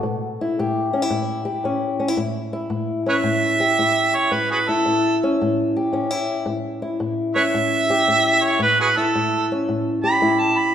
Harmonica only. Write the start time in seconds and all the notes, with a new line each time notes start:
3.09 B4 C#5 E5
4.15 C#5
4.33 B4
4.51 F#4 G#4 B4
4.69 A4
7.35 B4 C#5 E5
8.44 C#5
8.63 B4
8.81 F#4 G#4 B4
8.97 A4
10.04 B5
10.39 A5
10.58 B5